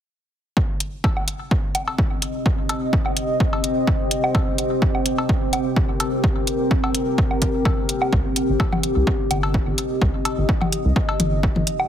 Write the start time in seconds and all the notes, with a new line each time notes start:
0.57 C4, kick
0.77 G4, closed hi-hat
1.02 D#5, kick, cowbell
1.17 low woodblock
1.28 closed hi-hat
1.51 kick
1.75 closed hi-hat, low woodblock
1.88 cowbell
1.98 kick
2.22 closed hi-hat
2.46 kick
2.69 closed hi-hat, cowbell
2.93 kick
3.06 low woodblock
3.17 closed hi-hat
3.40 kick
3.53 cowbell
3.64 closed hi-hat
3.87 kick
4.11 closed hi-hat
4.24 low woodblock
4.35 kick, cowbell
4.58 closed hi-hat
4.80 A#4, kick
4.95 low woodblock
5.06 closed hi-hat
5.18 cowbell
5.29 kick
5.53 closed hi-hat, low woodblock
5.76 kick
6.00 closed hi-hat, cowbell
6.24 kick
6.47 closed hi-hat
6.71 kick
6.84 cowbell, low woodblock
6.95 closed hi-hat
7.18 kick
7.31 low woodblock
7.42 kick, closed hi-hat
7.65 kick, cowbell
7.89 closed hi-hat
8.02 low woodblock
8.13 C2, kick
8.36 closed hi-hat
8.49 G1
8.58 D#5, kick, cowbell
8.73 mid tom, low woodblock
8.83 closed hi-hat
8.96 C2
9.07 kick
9.31 G1, closed hi-hat, low woodblock
9.43 cowbell
9.54 kick
9.67 G1
9.78 closed hi-hat
10.02 C2, kick
10.25 closed hi-hat, cowbell
10.38 G1
10.49 kick
10.61 mid tom, low woodblock
10.72 closed hi-hat
10.85 C2
10.96 kick
11.09 cowbell
11.20 G1, closed hi-hat, mid tom
11.43 kick
11.56 G1, mid tom
11.67 closed hi-hat
11.80 low woodblock